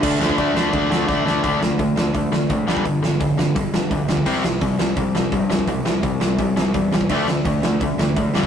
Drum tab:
CC |x---x---x-------|----------------|----------------|x---------------|
HH |----------------|o---o---o---o---|o---o---o---o---|----o---o---o---|
SD |--o---o---o-o-o-|--o---o---o---o-|--o---o---o---o-|--o---o---o---o-|
BD |o--oo---o---o---|o---o---o---o--o|o---o---o---o--o|o---o---o---o--o|

CC |----------------|x---------------|
HH |o---o---o---o---|----o---o---o---|
SD |--o---o---o---o-|--o---o---o---o-|
BD |o---o---o---o--o|o---o---o---o--o|